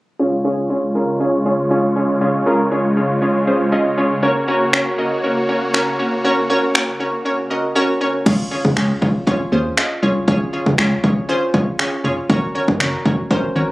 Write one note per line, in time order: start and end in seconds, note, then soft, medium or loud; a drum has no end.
0.19 8.22 C#3 medium
0.19 4.19 G#3 medium
0.19 0.32 C#4 loud
0.19 0.32 F4 loud
0.19 4.19 F4 medium
0.19 0.32 G#4 loud
0.19 4.19 C#5 medium
0.19 0.32 C#5 loud
0.44 0.57 C#4 loud
0.44 0.57 F4 medium
0.44 0.57 G#4 loud
0.44 0.57 C#5 loud
0.70 0.82 C#4 medium
0.70 0.82 F4 medium
0.70 0.82 G#4 medium
0.70 0.83 C#5 medium
0.95 1.07 C#4 medium
0.95 1.07 F4 medium
0.95 1.08 G#4 medium
0.95 1.08 A#4 medium
1.20 1.33 C#4 medium
1.20 1.33 F4 medium
1.20 1.33 G#4 medium
1.20 1.33 C#5 medium
1.45 1.58 C#4 medium
1.45 1.58 F4 medium
1.45 1.58 G#4 medium
1.45 1.58 C#5 medium
1.71 1.83 C#4 loud
1.71 1.83 F4 loud
1.71 1.83 G#4 loud
1.71 1.83 C#5 loud
1.96 2.08 C#4 medium
1.96 2.08 F4 medium
1.96 2.08 G#4 medium
1.96 2.09 C#5 medium
2.21 2.34 C#4 loud
2.21 2.34 F4 loud
2.21 2.34 G#4 loud
2.21 2.34 C#5 loud
2.46 2.59 C#4 loud
2.46 2.59 F4 loud
2.46 2.59 G#4 loud
2.46 2.59 A#4 loud
2.71 2.84 C#4 medium
2.71 2.84 F4 medium
2.71 2.84 G#4 medium
2.71 2.84 C#5 loud
2.97 3.09 C#4 medium
2.97 3.09 F4 medium
2.97 3.09 G#4 medium
2.97 3.09 C#5 medium
3.22 3.34 C#4 medium
3.22 3.34 F4 medium
3.22 3.34 G#4 medium
3.22 3.35 C#5 medium
3.47 3.60 C#4 medium
3.47 3.60 F4 medium
3.47 3.60 G#4 medium
3.47 3.60 C5 medium
3.72 3.85 C#4 loud
3.72 3.85 F4 loud
3.72 3.85 G#4 medium
3.72 3.85 D#5 loud
3.97 4.10 C#4 medium
3.97 4.10 F4 medium
3.97 4.10 G#4 medium
3.97 4.10 C#5 medium
4.23 8.22 A#3 medium
4.23 4.35 C#4 loud
4.23 8.22 F#4 medium
4.23 4.35 F#4 loud
4.23 4.35 A#4 loud
4.23 8.22 C#5 medium
4.23 4.35 C#5 loud
4.48 4.60 C#4 loud
4.48 4.60 F#4 loud
4.48 4.61 A#4 loud
4.48 4.61 C#5 loud
4.73 4.86 C#4 medium
4.73 4.86 F#4 medium
4.73 4.86 A#4 medium
4.73 4.86 C#5 loud
4.73 finger snap loud
4.98 5.11 C#4 medium
4.98 5.11 F#4 medium
4.98 5.11 A#4 medium
4.98 5.11 D#5 medium
5.24 5.36 C#4 medium
5.24 5.36 F#4 medium
5.24 5.36 A#4 medium
5.24 5.36 C#5 medium
5.49 5.61 C#4 medium
5.49 5.61 F#4 medium
5.49 5.61 A#4 medium
5.49 5.61 C#5 medium
5.74 5.86 C#4 loud
5.74 5.86 F#4 loud
5.74 5.87 A#4 loud
5.74 5.87 C#5 loud
5.74 finger snap loud
5.99 6.12 C#4 medium
5.99 6.12 F#4 medium
5.99 6.12 A#4 medium
5.99 6.12 C#5 medium
6.24 6.37 C#4 loud
6.24 6.37 F#4 loud
6.24 6.37 A#4 loud
6.24 6.37 C#5 loud
6.50 6.62 C#4 loud
6.50 6.62 F#4 loud
6.50 6.62 A#4 loud
6.50 6.62 C#5 loud
6.75 6.87 C#4 medium
6.75 6.87 F#4 medium
6.75 6.87 A#4 medium
6.75 6.88 C#5 loud
6.75 finger snap loud
7.00 7.12 C#4 medium
7.00 7.13 F#4 medium
7.00 7.13 A#4 medium
7.00 7.13 C#5 medium
7.25 7.38 C#4 medium
7.25 7.38 F#4 medium
7.25 7.38 A#4 medium
7.25 7.38 C#5 medium
7.50 7.63 C#4 medium
7.50 7.63 F#4 medium
7.50 7.63 A#4 medium
7.50 7.63 D#5 medium
7.75 7.88 C#4 loud
7.75 7.88 F#4 loud
7.75 7.88 A#4 loud
7.75 7.88 C#5 loud
8.01 8.13 C#4 medium
8.01 8.13 F#4 medium
8.01 8.13 A#4 medium
8.01 8.14 C#5 medium
8.26 8.42 C#2 loud
8.26 8.39 C#4 loud
8.26 8.39 F4 loud
8.26 8.39 G#4 loud
8.26 8.39 C#5 loud
8.26 kick loud
8.26 crash medium
8.51 8.64 C#4 medium
8.51 8.64 F4 medium
8.51 8.64 G#4 medium
8.51 8.64 C#5 loud
8.65 8.72 C#3 loud
8.65 kick medium
8.76 8.93 C#2 loud
8.76 8.89 C#4 medium
8.76 8.89 F4 medium
8.76 8.89 G#4 medium
8.76 8.89 C#5 medium
8.76 finger snap loud
9.02 9.18 C#2 medium
9.02 9.14 C#4 medium
9.02 9.14 F4 medium
9.02 9.14 G#4 medium
9.02 9.14 C#5 medium
9.02 kick medium
9.27 9.39 C#4 loud
9.27 9.39 F4 loud
9.27 9.39 G#4 loud
9.27 9.40 C#5 loud
9.27 kick medium
9.52 9.68 D#2 medium
9.52 9.65 C#4 medium
9.52 9.65 F4 medium
9.52 9.65 G#4 medium
9.52 9.65 C5 medium
9.77 9.90 C#4 medium
9.77 9.90 F4 medium
9.77 9.90 G#4 medium
9.77 9.90 D#5 loud
9.77 finger snap loud
10.02 10.19 C2 medium
10.02 10.15 C#4 medium
10.02 10.15 F4 medium
10.02 10.15 G#4 medium
10.02 10.15 C#5 medium
10.28 10.44 C#2 loud
10.28 10.40 C#4 loud
10.28 10.40 F4 loud
10.28 10.40 G#4 loud
10.28 10.40 C#5 loud
10.28 kick loud
10.53 10.65 C#4 medium
10.53 10.66 F4 medium
10.53 10.66 G#4 medium
10.53 10.66 C#5 medium
10.66 10.74 C#3 loud
10.66 kick medium
10.78 10.94 C#2 loud
10.78 10.91 C#4 medium
10.78 10.91 F4 medium
10.78 10.91 G#4 medium
10.78 10.91 C#5 medium
10.78 finger snap loud
11.03 11.20 C#2 medium
11.03 11.16 C#4 medium
11.03 11.16 F4 medium
11.03 11.16 G#4 medium
11.03 11.16 C#5 medium
11.03 kick medium
11.29 11.41 C#4 loud
11.29 11.41 F4 loud
11.29 11.41 G#4 loud
11.29 11.41 C5 loud
11.54 11.70 C#2 medium
11.54 11.66 C#4 medium
11.54 11.66 F4 medium
11.54 11.66 G#4 medium
11.54 11.67 C#5 medium
11.54 kick medium
11.79 11.92 C#4 medium
11.79 11.92 F4 medium
11.79 11.92 G#4 medium
11.79 11.92 C#5 medium
11.79 finger snap loud
12.04 12.20 F1 medium
12.04 12.17 C#4 medium
12.04 12.17 F4 medium
12.04 12.17 G#4 medium
12.04 12.17 C#5 loud
12.30 12.46 F#1 loud
12.30 12.42 C#4 loud
12.30 12.42 F#4 loud
12.30 12.42 A#4 loud
12.30 12.42 C#5 loud
12.30 kick loud
12.55 12.67 C#4 medium
12.55 12.67 F#4 medium
12.55 12.67 A#4 medium
12.55 12.67 C#5 loud
12.68 12.76 F#2 medium
12.68 kick medium
12.80 12.96 F#1 medium
12.80 12.92 C#4 medium
12.80 12.92 F#4 medium
12.80 12.93 A#4 medium
12.80 12.93 C#5 loud
12.80 finger snap loud
13.05 13.21 F#1 loud
13.05 13.18 C#4 medium
13.05 13.18 F#4 medium
13.05 13.18 A#4 medium
13.05 13.18 C#5 medium
13.05 kick medium
13.30 13.43 C#4 loud
13.30 13.43 F#4 loud
13.30 13.43 A#4 loud
13.30 13.43 C5 loud
13.30 kick medium
13.56 13.72 G#1 medium
13.56 13.68 C#4 medium
13.56 13.68 F#4 medium
13.56 13.68 A#4 medium
13.56 13.68 C#5 medium